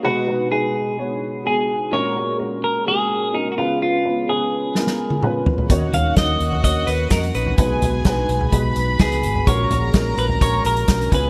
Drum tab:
HH |----------------|----------------|----------------|x-x-x-x-x-x-xxx-|
SD |----------------|----------------|--------oo------|----o-------o---|
T1 |----------------|----------------|-----------o----|----------------|
T2 |----------------|----------------|------------o---|----------------|
FT |----------------|----------------|--------------oo|--o----o-------o|
BD |----------------|----------------|----------------|o---o---o---o---|

HH |x-x-x-x-x-x-xxx-|x-x-x-x-x-xxxxx-|
SD |----o-------o---|----o-------o---|
T1 |----------------|----------------|
T2 |----------------|----------------|
FT |--o----o-------o|--o----o--------|
BD |o---o---o---o---|o---o---o---o-o-|